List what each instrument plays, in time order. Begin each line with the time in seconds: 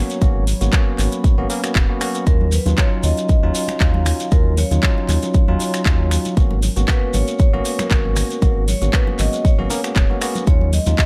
Already playing: analog synth pad F#3 C#5 A#5, tine electric piano A#3 B3 C#4 F#4, vibraphone C#5
0.10 closed hi-hat, shekere
0.21 analog synth bass G#1, tine electric piano A#3 B3 C#4 F#4, analog synth pad B5, kick, closed hi-hat, shekere
0.47 open hi-hat, shekere
0.61 analog synth bass G#1, tine electric piano A#3 B3 C#4 F#4, closed hi-hat, shekere
0.73 tine electric piano A#3 B3 C#4 F#4, finger snap, kick, clap, closed hi-hat, shekere
0.99 analog synth bass G#1, clap, open hi-hat, shekere
1.12 closed hi-hat, shekere
1.24 kick, closed hi-hat, shekere
1.38 analog synth bass G#1, tine electric piano A#3 B3 C#4 F#4
1.50 tine electric piano A#3 B3 C#4 A#4, open hi-hat, shekere
1.64 tine electric piano A#3 B3 C#4 F#4, finger snap, closed hi-hat, shekere
1.75 analog synth bass D#1, kick, clap, closed hi-hat, shekere
1.89 tine electric piano A#3 B3 C#4 F#4
2.01 tine electric piano A#3 B3 C#4 F#4, finger snap, open hi-hat, shekere
2.15 closed hi-hat, shekere
2.27 analog synth bass D#2, tine electric piano F#3 C#4 D#4 F4, analog synth pad C#4 F5, vibraphone A#4, kick, closed hi-hat, shekere
2.41 muted conga
2.52 vibraphone B4, open hi-hat, high conga, shekere
2.66 analog synth bass D#2, tine electric piano F#3 C#4 D#4 F4, closed hi-hat, muted conga, shekere
2.78 tine electric piano F#3 C#4 D#4 F4, vibraphone C#5, finger snap, kick, clap, closed hi-hat, shekere
3.03 analog synth bass D#2, vibraphone D#5, open hi-hat, muted conga, high conga, low conga, shekere
3.17 closed hi-hat, shekere
3.29 kick, closed hi-hat, muted conga, shekere
3.43 analog synth bass D#2, tine electric piano F#3 C#4 D#4 F4
3.55 open hi-hat, shekere
3.68 finger snap, closed hi-hat, muted conga, high conga, shekere
3.80 analog synth bass D#2, tine electric piano F#3 C#4 D#4 F4, vibraphone F5, kick, clap, closed hi-hat, shekere
3.94 muted conga, high conga
4.06 finger snap, open hi-hat, low conga, shekere
4.20 closed hi-hat, shekere
4.31 analog synth bass D#2, tine electric piano F#3 C#4 D#4 F4, vibraphone A#4, kick, closed hi-hat, muted conga, shekere
4.57 vibraphone C#5, open hi-hat, muted conga, high conga, shekere
4.71 analog synth bass D#2, tine electric piano F#3 C#4 D#4 F4, closed hi-hat, low conga, shekere
4.83 tine electric piano F#3 C#4 D#4 F4, finger snap, kick, clap, closed hi-hat, shekere
4.98 muted conga
5.08 analog synth bass D#2, clap, open hi-hat, high conga, low conga, shekere
5.22 closed hi-hat, muted conga, shekere
5.34 kick, closed hi-hat, shekere
5.48 analog synth bass D#2, tine electric piano F#3 C#4 D#4 F4, high conga
5.59 open hi-hat, muted conga, shekere
5.74 finger snap, closed hi-hat, shekere
5.86 analog synth bass D#2, tine electric piano F#3 C#4 D#4 F4, kick, clap, closed hi-hat, muted conga, shekere
6.11 finger snap, open hi-hat, shekere
6.25 closed hi-hat, muted conga, shekere
6.37 analog synth bass G#1, analog synth pad G#3 A#4 C#5, tine electric piano A#3 B3 C#4 F#4, kick, closed hi-hat, shekere
6.51 muted conga
6.62 open hi-hat, high conga, shekere
6.76 analog synth bass G#1, tine electric piano A#3 B3 C#4 F#4, closed hi-hat, shekere
6.88 tine electric piano A#3 B3 C#4 F#4, vibraphone B4, finger snap, kick, clap, closed hi-hat, muted conga, shekere
7.14 analog synth bass G#1, vibraphone C#5, open hi-hat, muted conga, high conga, low conga, shekere
7.28 closed hi-hat, shekere
7.39 vibraphone C#5, kick, closed hi-hat, shekere
7.53 analog synth bass G#1, tine electric piano A#3 B3 C#4 F#4, muted conga
7.65 open hi-hat, shekere
7.79 vibraphone A#4, finger snap, closed hi-hat, muted conga, high conga, shekere
7.91 analog synth bass G#1, tine electric piano A#3 B3 C#4 F#4, kick, clap, closed hi-hat, shekere
8.05 high conga
8.16 vibraphone A#4, finger snap, open hi-hat, muted conga, low conga, shekere
8.30 closed hi-hat, shekere
8.42 analog synth bass G#1, tine electric piano A#3 B3 C#4 F#4, analog synth pad G#4, kick, closed hi-hat, muted conga, shekere
8.68 vibraphone C#5, open hi-hat, high conga, shekere
8.82 analog synth bass G#1, tine electric piano A#3 B3 C#4 F#4, closed hi-hat, muted conga, low conga, shekere
8.93 tine electric piano A#3 B3 C#4 F#4, vibraphone B4, finger snap, kick, clap, closed hi-hat, shekere
9.07 muted conga
9.19 analog synth bass G#1, vibraphone D#5, clap, open hi-hat, high conga, low conga, shekere
9.33 closed hi-hat, shekere
9.45 vibraphone C#5, kick, closed hi-hat, muted conga, shekere
9.58 analog synth bass G#1, tine electric piano A#3 B3 C#4 F#4, high conga
9.70 tine electric piano A#3 B3 C#4 A#4, open hi-hat, muted conga, shekere
9.84 tine electric piano A#3 B3 C#4 F#4, finger snap, closed hi-hat, shekere
9.96 analog synth bass D#1, kick, clap, closed hi-hat, shekere
10.10 tine electric piano A#3 B3 C#4 F#4, muted conga
10.21 tine electric piano A#3 B3 C#4 F#4, finger snap, open hi-hat, shekere
10.35 closed hi-hat, muted conga, shekere
10.47 analog synth bass D#2, tine electric piano F#3 C#4 F4, analog synth pad C#4 D#5, vibraphone C#5, kick, closed hi-hat, shekere
10.61 muted conga
10.73 vibraphone D#5, open hi-hat, high conga, shekere
10.86 analog synth bass D#2, tine electric piano F#3 C#4 D#4 F4, closed hi-hat, muted conga, shekere
10.98 tine electric piano F#3 C#4 D#4 F4, vibraphone D#5, finger snap, kick, clap, closed hi-hat, shekere